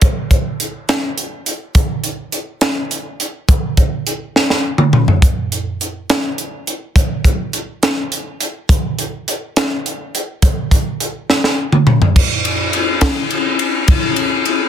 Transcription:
0.02 kick loud
0.02 closed hi-hat medium
0.31 kick medium
0.31 closed hi-hat medium
0.60 closed hi-hat medium
0.89 snare loud
0.89 closed hi-hat medium
1.18 closed hi-hat medium
1.46 closed hi-hat medium
1.75 kick loud
1.75 closed hi-hat medium
2.04 closed hi-hat medium
2.32 closed hi-hat medium
2.61 snare loud
2.61 closed hi-hat medium
2.91 closed hi-hat medium
3.20 closed hi-hat medium
3.49 kick loud
3.49 closed hi-hat loud
3.77 kick medium
3.77 closed hi-hat medium
4.07 closed hi-hat medium
4.36 snare medium
4.50 snare medium
4.78 mid tom medium
4.93 mid tom medium
5.08 floor tom medium
5.22 kick loud
5.22 closed hi-hat medium
5.52 closed hi-hat medium
5.81 closed hi-hat medium
6.10 snare loud
6.10 closed hi-hat medium
6.38 closed hi-hat medium
6.67 closed hi-hat medium
6.96 kick loud
6.96 closed hi-hat medium
7.25 kick medium
7.25 closed hi-hat medium
7.53 closed hi-hat medium
7.83 snare loud
7.83 closed hi-hat medium
8.12 closed hi-hat medium
8.41 closed hi-hat medium
8.69 kick loud
8.69 closed hi-hat loud
8.99 closed hi-hat medium
9.28 closed hi-hat medium
9.56 snare loud
9.56 closed hi-hat medium
9.86 closed hi-hat medium
10.15 closed hi-hat medium
10.42 kick loud
10.42 closed hi-hat loud
10.71 kick medium
10.71 closed hi-hat medium
11.00 closed hi-hat medium
11.30 snare medium
11.44 snare medium
11.72 mid tom medium
11.87 mid tom loud
12.02 floor tom loud
12.16 kick loud
12.16 crash loud
12.45 ride medium
12.73 ride medium
13.01 kick medium
13.01 snare loud
13.01 ride loud
13.31 ride medium
13.59 ride medium
13.88 kick loud
13.88 ride loud
14.16 ride medium
14.45 ride medium

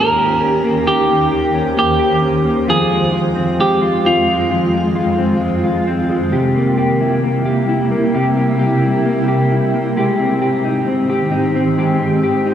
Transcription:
0.00 2.64 D#2 medium
0.00 0.86 D#3 medium
0.00 6.27 D#3 medium
0.00 0.62 A#3 soft
0.00 0.40 C#4 soft
0.00 0.84 C#4 medium
0.00 0.17 G4 medium
0.00 2.64 G4 medium
0.00 0.87 A#4 medium
0.18 0.85 G4 medium
0.41 1.53 C#4 medium
0.63 1.08 A#3 soft
0.86 3.16 D#3 medium
0.86 1.31 G4 medium
0.86 1.74 G4 medium
0.86 2.66 C5 medium
1.09 1.75 A#3 soft
1.32 1.98 G4 medium
1.54 2.21 C#4 medium
1.76 2.43 A#3 medium
1.76 2.69 G4 medium
1.99 2.68 G4 medium
2.22 2.77 C#4 soft
2.45 2.77 A#3 soft
2.67 4.49 F2 medium
2.67 6.28 F2 medium
2.67 6.28 G#3 medium
2.67 6.28 F4 medium
2.67 3.11 F4 medium
2.67 3.60 G#4 medium
2.91 3.57 G#3 medium
3.13 3.80 F4 medium
3.36 4.04 C4 medium
3.59 4.26 G#3 medium
3.59 4.07 G4 medium
3.82 4.50 F4 medium
4.05 5.18 C4 medium
4.05 4.92 F4 medium
4.27 4.72 G#3 medium
4.50 6.41 F2 medium
4.50 4.94 F4 medium
4.73 5.39 G#3 soft
4.95 5.63 F4 medium
5.18 5.87 C4 medium
5.41 6.08 G#3 soft
5.64 6.32 F4 medium
5.87 6.58 C4 soft
6.09 6.41 G#3 soft
6.32 8.13 C3 medium
6.32 9.92 C3 medium
6.32 9.92 G3 medium
6.32 9.92 A#3 medium
6.32 9.92 E4 medium
6.32 6.77 G4 medium
6.55 7.22 A#3 medium
6.78 7.45 G4 medium
7.01 7.68 E4 soft
7.24 7.90 A#3 medium
7.45 8.14 G4 medium
7.69 8.81 E4 medium
7.91 8.35 A#3 medium
8.14 10.05 C3 medium
8.14 8.59 G4 medium
8.37 9.04 A#3 soft
8.59 9.27 G4 medium
8.82 9.50 E4 soft
9.05 9.73 A#3 medium
9.28 9.97 G4 medium
9.51 10.05 E4 soft
9.74 10.05 A#3 soft
9.95 12.54 G#2 medium
9.95 12.54 D#3 medium
9.95 11.77 G#3 medium
9.95 12.54 C4 medium
9.95 11.75 G4 medium
9.95 10.41 G4 medium
10.19 10.86 C4 soft
10.42 11.09 G4 medium
10.65 11.31 D#4 soft
10.88 11.54 C4 soft
11.09 11.78 G4 medium
11.31 12.45 D#4 medium
11.55 11.99 C4 medium
11.77 12.54 G#3 medium
11.77 12.54 F4 medium
11.77 12.23 G4 medium
12.00 12.54 C4 soft
12.23 12.54 G4 medium
12.46 12.54 D#4 medium

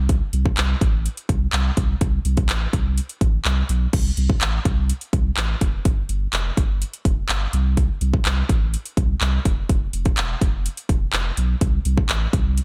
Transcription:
0.00 0.21 C2 loud
0.09 kick loud
0.09 closed hi-hat medium
0.33 0.51 C2 loud
0.33 closed hi-hat medium
0.46 kick medium
0.57 0.75 C2 loud
0.57 clap loud
0.57 closed hi-hat medium
0.81 1.08 A1 loud
0.81 kick loud
0.81 closed hi-hat medium
1.06 closed hi-hat loud
1.17 closed hi-hat medium
1.29 1.47 C2 loud
1.29 kick medium
1.29 closed hi-hat medium
1.53 1.71 C2 medium
1.53 clap loud
1.53 closed hi-hat medium
1.77 1.95 C2 loud
1.77 kick loud
1.77 closed hi-hat medium
2.01 2.19 C2 loud
2.01 kick loud
2.01 closed hi-hat loud
2.25 2.51 C2 loud
2.25 closed hi-hat medium
2.37 kick medium
2.37 closed hi-hat soft
2.49 2.67 A1 loud
2.49 clap loud
2.49 closed hi-hat medium
2.73 3.00 C2 medium
2.73 kick loud
2.73 closed hi-hat medium
2.98 closed hi-hat medium
3.09 closed hi-hat medium
3.21 3.39 A1 loud
3.21 kick loud
3.21 closed hi-hat medium
3.45 3.63 C2 medium
3.45 clap loud
3.45 closed hi-hat medium
3.69 3.87 B1 loud
3.69 closed hi-hat medium
3.93 4.11 C2 loud
3.93 kick loud
3.93 closed hi-hat medium
3.93 crash loud
4.17 4.35 C2 loud
4.17 closed hi-hat medium
4.30 kick loud
4.41 4.59 A1 loud
4.41 clap loud
4.41 closed hi-hat medium
4.65 4.92 C2 loud
4.65 kick loud
4.65 closed hi-hat medium
4.90 closed hi-hat loud
5.01 closed hi-hat medium
5.13 5.31 C2 loud
5.13 kick loud
5.13 closed hi-hat medium
5.37 5.55 A1 medium
5.37 clap loud
5.37 closed hi-hat medium
5.61 5.79 F1 loud
5.61 kick loud
5.61 closed hi-hat medium
5.85 6.03 G1 loud
5.85 kick loud
5.85 closed hi-hat medium
6.09 6.27 G1 loud
6.09 closed hi-hat medium
6.33 6.51 F1 loud
6.33 clap loud
6.33 closed hi-hat medium
6.57 6.84 G1 loud
6.57 kick loud
6.57 closed hi-hat medium
6.82 closed hi-hat medium
6.93 closed hi-hat medium
7.05 7.23 F1 medium
7.05 kick loud
7.05 closed hi-hat medium
7.29 7.47 G1 medium
7.29 clap loud
7.29 closed hi-hat medium
7.53 7.89 C2 loud
7.53 closed hi-hat medium
7.77 kick loud
7.77 closed hi-hat loud
8.01 8.19 C2 loud
8.01 closed hi-hat medium
8.14 kick medium
8.25 8.43 C2 loud
8.25 clap loud
8.25 closed hi-hat medium
8.49 8.76 A1 medium
8.49 kick loud
8.49 closed hi-hat medium
8.74 closed hi-hat loud
8.85 closed hi-hat medium
8.97 9.15 C2 medium
8.97 kick loud
8.97 closed hi-hat medium
9.21 9.39 C2 medium
9.21 clap loud
9.21 closed hi-hat medium
9.45 9.63 F1 loud
9.45 kick loud
9.45 closed hi-hat medium
9.69 9.87 F1 loud
9.69 kick loud
9.69 closed hi-hat loud
9.93 10.11 F1 loud
9.93 closed hi-hat medium
10.05 kick medium
10.05 closed hi-hat medium
10.17 10.35 E1 loud
10.17 clap loud
10.17 closed hi-hat medium
10.41 10.68 F1 loud
10.41 kick loud
10.41 closed hi-hat medium
10.66 closed hi-hat loud
10.77 closed hi-hat medium
10.89 11.07 E1 medium
10.89 kick loud
10.89 closed hi-hat medium
11.13 11.31 F1 loud
11.13 clap loud
11.13 closed hi-hat medium
11.37 11.55 B1 medium
11.37 closed hi-hat medium
11.61 11.79 C2 loud
11.61 kick loud
11.61 closed hi-hat medium
11.85 12.03 C2 loud
11.85 closed hi-hat medium
11.97 kick loud
12.09 12.27 A1 loud
12.09 clap loud
12.09 closed hi-hat medium
12.33 12.60 C2 loud
12.33 kick loud
12.33 closed hi-hat medium
12.58 closed hi-hat loud

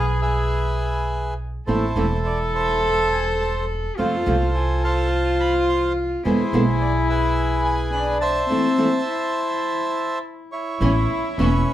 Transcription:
0.00 1.57 B1 medium
0.00 0.21 G#4 medium
0.00 1.38 G#4 medium
0.00 0.21 B4 medium
0.22 1.34 G#4 medium
0.22 1.34 B4 medium
0.22 1.34 E5 medium
1.67 1.92 A1 medium
1.67 1.84 E3 soft
1.67 1.85 A3 medium
1.67 1.85 C4 medium
1.67 2.79 E4 soft
1.67 1.85 E4 medium
1.67 2.53 A4 soft
1.67 3.98 A4 loud
1.67 2.27 C5 medium
1.96 3.88 E1 medium
1.96 2.05 E3 medium
1.96 2.05 A3 medium
1.96 2.06 C4 medium
1.96 2.06 E4 medium
2.26 2.39 D5 medium
2.55 3.65 A4 medium
2.55 3.65 C5 medium
2.55 3.08 E5 medium
3.12 3.25 G#5 medium
3.41 3.54 A5 medium
3.97 4.22 F2 medium
3.97 4.15 C3 medium
3.97 4.15 F3 medium
3.97 4.15 A3 medium
3.97 4.15 C4 medium
3.97 4.54 F4 medium
3.97 4.15 F4 medium
3.97 5.08 A4 medium
3.97 4.83 C5 soft
3.97 4.51 F5 medium
4.26 6.15 C2 medium
4.26 4.35 C3 medium
4.26 4.35 F3 medium
4.26 4.35 A3 medium
4.26 4.35 C4 medium
4.26 4.36 F4 medium
4.54 6.25 F4 medium
4.54 4.84 G#5 medium
4.84 5.93 C5 medium
4.84 5.93 F5 medium
4.84 5.42 A5 medium
5.40 5.53 B5 medium
5.69 5.82 C6 medium
6.23 6.48 E2 medium
6.23 6.41 B2 medium
6.23 6.41 D3 medium
6.23 6.41 G#3 medium
6.23 6.42 B3 medium
6.23 7.93 E4 medium
6.23 6.42 E4 medium
6.23 7.08 G#4 medium
6.23 6.83 C5 medium
6.53 8.40 B1 medium
6.53 6.62 B2 medium
6.53 6.62 D3 medium
6.53 6.62 G#3 medium
6.53 6.62 B3 medium
6.53 6.62 E4 medium
6.81 6.93 D5 medium
7.09 8.18 G#4 medium
7.09 8.18 B4 medium
7.09 7.61 E5 medium
7.65 7.91 G#5 medium
7.93 8.46 D4 medium
7.93 8.05 B5 medium
8.21 10.19 C5 medium
8.21 10.19 E5 medium
8.21 10.18 A5 medium
8.49 8.66 E3 medium
8.49 8.67 A3 medium
8.49 9.03 C4 medium
8.49 8.67 C4 medium
8.49 8.67 E4 medium
8.78 8.87 E3 medium
8.78 8.87 A3 medium
8.78 8.87 C4 medium
8.78 8.87 E4 medium
9.07 10.48 E4 medium
10.52 11.64 E4 medium
10.52 11.38 C#5 medium
10.80 11.05 A1 medium
10.80 10.90 E3 medium
10.80 11.05 A3 medium
10.80 10.90 B3 medium
10.80 11.05 B3 medium
10.80 11.05 C#4 medium
10.80 10.90 C#4 medium
10.80 11.40 E4 medium
10.80 10.91 E4 medium
11.38 11.62 E1 medium
11.38 11.48 E3 medium
11.38 11.63 A3 medium
11.38 11.63 B3 medium
11.38 11.48 B3 medium
11.38 11.73 C#4 medium
11.38 11.63 C#4 medium
11.38 11.48 C#4 medium
11.38 11.48 E4 medium
11.38 11.73 B4 medium
11.38 11.73 C#5 medium
11.38 11.73 E5 medium

